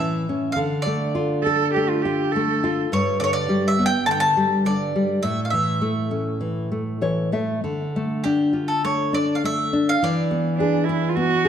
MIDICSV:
0, 0, Header, 1, 4, 480
1, 0, Start_track
1, 0, Key_signature, -1, "minor"
1, 0, Tempo, 581395
1, 462, Time_signature, 4, 2, 24, 8
1, 4778, Tempo, 604230
1, 7178, Tempo, 583090
1, 9381, End_track
2, 0, Start_track
2, 0, Title_t, "Mandolin"
2, 0, Program_c, 0, 25
2, 0, Note_on_c, 0, 76, 94
2, 431, Note_on_c, 0, 77, 90
2, 467, Note_off_c, 0, 76, 0
2, 479, Note_off_c, 0, 77, 0
2, 678, Note_on_c, 0, 74, 87
2, 1628, Note_off_c, 0, 74, 0
2, 2420, Note_on_c, 0, 73, 90
2, 2638, Note_off_c, 0, 73, 0
2, 2641, Note_on_c, 0, 74, 98
2, 2670, Note_off_c, 0, 74, 0
2, 2673, Note_on_c, 0, 73, 89
2, 2729, Note_off_c, 0, 73, 0
2, 2750, Note_on_c, 0, 74, 106
2, 3033, Note_off_c, 0, 74, 0
2, 3036, Note_on_c, 0, 76, 89
2, 3182, Note_off_c, 0, 76, 0
2, 3185, Note_on_c, 0, 79, 114
2, 3346, Note_off_c, 0, 79, 0
2, 3353, Note_on_c, 0, 81, 111
2, 3390, Note_off_c, 0, 81, 0
2, 3394, Note_on_c, 0, 79, 99
2, 3450, Note_off_c, 0, 79, 0
2, 3469, Note_on_c, 0, 81, 115
2, 3836, Note_off_c, 0, 81, 0
2, 3849, Note_on_c, 0, 74, 99
2, 4315, Note_on_c, 0, 76, 95
2, 4322, Note_off_c, 0, 74, 0
2, 4453, Note_off_c, 0, 76, 0
2, 4499, Note_on_c, 0, 77, 60
2, 4541, Note_off_c, 0, 77, 0
2, 4544, Note_on_c, 0, 76, 78
2, 5460, Note_off_c, 0, 76, 0
2, 6724, Note_on_c, 0, 67, 76
2, 7076, Note_on_c, 0, 69, 65
2, 7079, Note_off_c, 0, 67, 0
2, 7189, Note_off_c, 0, 69, 0
2, 7209, Note_on_c, 0, 73, 89
2, 7445, Note_off_c, 0, 73, 0
2, 7454, Note_on_c, 0, 74, 86
2, 7626, Note_on_c, 0, 77, 67
2, 7630, Note_off_c, 0, 74, 0
2, 7674, Note_off_c, 0, 77, 0
2, 7710, Note_on_c, 0, 76, 98
2, 8061, Note_off_c, 0, 76, 0
2, 8070, Note_on_c, 0, 77, 99
2, 8172, Note_off_c, 0, 77, 0
2, 8189, Note_on_c, 0, 74, 88
2, 9381, Note_off_c, 0, 74, 0
2, 9381, End_track
3, 0, Start_track
3, 0, Title_t, "Cello"
3, 0, Program_c, 1, 42
3, 1183, Note_on_c, 1, 69, 112
3, 1411, Note_off_c, 1, 69, 0
3, 1434, Note_on_c, 1, 67, 103
3, 1560, Note_on_c, 1, 65, 89
3, 1572, Note_off_c, 1, 67, 0
3, 1668, Note_on_c, 1, 67, 93
3, 1681, Note_off_c, 1, 65, 0
3, 1910, Note_on_c, 1, 69, 89
3, 1922, Note_off_c, 1, 67, 0
3, 2270, Note_off_c, 1, 69, 0
3, 8626, Note_on_c, 1, 62, 93
3, 8853, Note_on_c, 1, 64, 90
3, 8865, Note_off_c, 1, 62, 0
3, 9055, Note_on_c, 1, 65, 72
3, 9067, Note_off_c, 1, 64, 0
3, 9109, Note_on_c, 1, 66, 111
3, 9121, Note_off_c, 1, 65, 0
3, 9381, Note_off_c, 1, 66, 0
3, 9381, End_track
4, 0, Start_track
4, 0, Title_t, "Nylon-string guitar"
4, 0, Program_c, 2, 24
4, 0, Note_on_c, 2, 45, 60
4, 0, Note_on_c, 2, 52, 56
4, 216, Note_off_c, 2, 52, 0
4, 241, Note_on_c, 2, 61, 48
4, 429, Note_off_c, 2, 45, 0
4, 463, Note_on_c, 2, 50, 68
4, 466, Note_off_c, 2, 61, 0
4, 713, Note_on_c, 2, 57, 60
4, 945, Note_off_c, 2, 57, 0
4, 949, Note_on_c, 2, 65, 51
4, 1184, Note_off_c, 2, 65, 0
4, 1209, Note_on_c, 2, 69, 56
4, 1435, Note_off_c, 2, 69, 0
4, 1456, Note_on_c, 2, 57, 51
4, 1679, Note_off_c, 2, 57, 0
4, 1695, Note_on_c, 2, 65, 57
4, 1920, Note_off_c, 2, 65, 0
4, 1948, Note_on_c, 2, 57, 60
4, 2165, Note_off_c, 2, 57, 0
4, 2178, Note_on_c, 2, 65, 57
4, 2357, Note_off_c, 2, 50, 0
4, 2393, Note_off_c, 2, 65, 0
4, 2411, Note_on_c, 2, 43, 69
4, 2645, Note_on_c, 2, 50, 58
4, 2862, Note_off_c, 2, 50, 0
4, 2881, Note_on_c, 2, 55, 61
4, 3100, Note_off_c, 2, 55, 0
4, 3126, Note_on_c, 2, 59, 59
4, 3345, Note_off_c, 2, 59, 0
4, 3369, Note_on_c, 2, 50, 59
4, 3588, Note_off_c, 2, 50, 0
4, 3606, Note_on_c, 2, 55, 58
4, 3823, Note_off_c, 2, 55, 0
4, 3841, Note_on_c, 2, 50, 57
4, 4058, Note_off_c, 2, 50, 0
4, 4092, Note_on_c, 2, 55, 52
4, 4269, Note_off_c, 2, 43, 0
4, 4305, Note_off_c, 2, 55, 0
4, 4324, Note_on_c, 2, 45, 67
4, 4567, Note_on_c, 2, 52, 57
4, 4786, Note_off_c, 2, 52, 0
4, 4800, Note_on_c, 2, 57, 55
4, 5016, Note_off_c, 2, 57, 0
4, 5034, Note_on_c, 2, 61, 52
4, 5252, Note_off_c, 2, 61, 0
4, 5270, Note_on_c, 2, 52, 49
4, 5491, Note_off_c, 2, 52, 0
4, 5515, Note_on_c, 2, 57, 47
4, 5740, Note_off_c, 2, 57, 0
4, 5753, Note_on_c, 2, 52, 46
4, 5757, Note_on_c, 2, 73, 60
4, 5975, Note_off_c, 2, 73, 0
4, 5983, Note_off_c, 2, 52, 0
4, 5998, Note_on_c, 2, 57, 44
4, 6004, Note_on_c, 2, 76, 55
4, 6208, Note_off_c, 2, 45, 0
4, 6219, Note_off_c, 2, 76, 0
4, 6226, Note_off_c, 2, 57, 0
4, 6248, Note_on_c, 2, 50, 57
4, 6505, Note_on_c, 2, 57, 51
4, 6717, Note_off_c, 2, 57, 0
4, 6738, Note_on_c, 2, 62, 55
4, 6951, Note_off_c, 2, 62, 0
4, 6957, Note_on_c, 2, 65, 48
4, 7178, Note_off_c, 2, 65, 0
4, 7206, Note_on_c, 2, 57, 49
4, 7429, Note_off_c, 2, 57, 0
4, 7443, Note_on_c, 2, 62, 55
4, 7669, Note_off_c, 2, 62, 0
4, 7698, Note_on_c, 2, 57, 58
4, 7918, Note_off_c, 2, 57, 0
4, 7937, Note_on_c, 2, 62, 53
4, 8128, Note_off_c, 2, 50, 0
4, 8156, Note_off_c, 2, 62, 0
4, 8179, Note_on_c, 2, 52, 70
4, 8413, Note_on_c, 2, 59, 56
4, 8631, Note_off_c, 2, 59, 0
4, 8654, Note_on_c, 2, 68, 54
4, 8870, Note_off_c, 2, 68, 0
4, 8892, Note_on_c, 2, 71, 60
4, 9108, Note_off_c, 2, 71, 0
4, 9118, Note_on_c, 2, 59, 55
4, 9340, Note_off_c, 2, 59, 0
4, 9352, Note_on_c, 2, 68, 60
4, 9381, Note_off_c, 2, 52, 0
4, 9381, Note_off_c, 2, 68, 0
4, 9381, End_track
0, 0, End_of_file